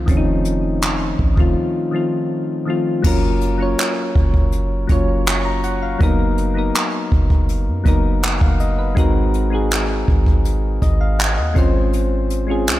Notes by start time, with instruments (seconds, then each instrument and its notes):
Already playing: synth keys D#3 F3 A3 C4 F4
0.06 808-style bass F1, synth keys D#3 F3 A3 C4, kick, closed hi-hat
0.10 synth keys C#4
0.17 synth keys D#4
0.45 closed hi-hat
0.82 clap, closed hi-hat
1.19 808-style bass A1, kick
1.35 808-style bass F1, synth keys D#3 F3 A3 C4, kick
1.40 synth keys F4
1.91 synth keys D#3 F3 A3 C4
1.96 synth keys F4
2.65 synth keys D#3 F3 A3 C4
2.70 synth keys F4
3.02 808-style bass F#1, synth keys F#3 A#3 C#4 F4, kick, crash
3.07 synth keys A#4
3.41 closed hi-hat
3.58 synth keys F#3 A#3 C#4 F4
3.62 synth keys C#5
3.78 clap, closed hi-hat
4.15 808-style bass F#1, kick
4.34 kick
4.52 closed hi-hat
4.87 808-style bass F#1, synth keys F#3 A#3 C#4 F4, kick, closed hi-hat
4.92 synth keys C#5
5.26 synth keys C#6, clap, closed hi-hat
5.45 synth keys A#5
5.64 synth keys F#5, closed hi-hat
5.82 synth keys F5
5.99 808-style bass F#1, synth keys F#3 A#3 B3 D#4, kick, closed hi-hat
6.03 synth keys A#4
6.38 closed hi-hat
6.54 synth keys F#3 A#3 B3 D#4
6.59 synth keys A#4
6.75 clap, closed hi-hat
7.12 808-style bass F#1, kick
7.30 kick
7.49 closed hi-hat
7.68 808-style bass F#2
7.84 808-style bass F#1, synth keys F#3 A#3 B3 D#4, kick, closed hi-hat
7.88 synth keys A#4
8.23 synth keys F#5, clap, closed hi-hat
8.41 808-style bass F#1, synth keys F5, kick
8.60 synth keys D#5, closed hi-hat
8.79 synth keys B4
8.95 808-style bass G#1, synth keys G#3 C4 D#4 F#4, kick, closed hi-hat
8.99 synth keys A#4
9.34 closed hi-hat
9.50 synth keys G#3 C4 D#4 F#4
9.55 synth keys G#4
9.71 clap, closed hi-hat
10.08 808-style bass G#1, kick
10.26 kick
10.45 closed hi-hat
10.82 808-style bass G#1, synth keys D#5, kick, closed hi-hat
11.01 synth keys F5
11.19 synth keys F#5, clap, closed hi-hat
11.38 808-style bass D#2, synth keys D#5
11.54 808-style bass G#1, synth keys G#3 C4 C#4 F4, kick, closed hi-hat
11.58 synth keys C5
11.93 closed hi-hat
12.30 closed hi-hat
12.47 synth keys G#3 C4 C#4 F4
12.51 synth keys G#4
12.67 808-style bass C2, clap, closed hi-hat